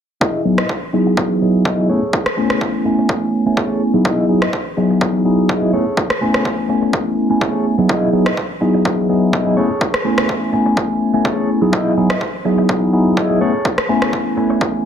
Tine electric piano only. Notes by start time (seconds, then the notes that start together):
0.45 F#3 B3 D#4 E4 G#4
0.93 F#3 B3 D#4 E4 G#4
1.17 F#3 B3 E4
1.41 F#3 B3 D#4 E4 G#4
1.78 F#3 B3 D#4 E4 G#4
1.89 A3 B3 C#4 E4 G#4
2.37 A3 B3 C#4 E4 G#5
2.84 A3 B3 C#4 E4 G#5
3.46 A3 B3 C#4 E4 G#5
3.93 F#3 B3 D#4 E4 G#4
4.29 F#3 B3 D#4 E4 G#4
4.77 F#3 B3 D#4 E4 G#4
5.01 F#3 D#4 E4
5.25 F#3 B3 D#4 E4 G#4
5.62 F#3 B3 D#4 E4 G#4
5.73 A3 B3 C#4 E4 G#4
6.21 A3 B3 C#4 E4 G#5
6.68 A3 B3 C#4 E4 G#5
7.30 A3 B3 C#4 E4 G#5
7.78 F#3 B3 D#4 E4 G#4
8.13 F#3 B3 D#4 E4 G#4
8.61 F#3 B3 D#4 E4 G#4
8.85 F#3 D#4 E4 G#4
9.09 F#3 B3 D#4 E4 G#4
9.46 F#3 B3 D#4 E4 G#4
9.57 A3 B3 C#4 E4 G#4
10.05 A3 B3 C#4 E4 G#5
10.52 A3 B3 C#4 E4 G#5
11.13 A3 B3 C#4 E4 G#5
11.61 F#3 B3 D#4 E4 G#4
11.97 F#3 B3 D#4 E4 G#4
12.45 F#3 B3 D#4 E4 G#4
12.69 F#3 B3 D#4 E4 G#4
12.93 F#3 B3 D#4 E4 G#4
13.30 F#3 B3 D#4 E4 G#4
13.40 A3 B3 C#4 E4 G#4
13.89 A3 B3 C#4 E4 G#5
14.36 A3 B3 C#4 E4 G#5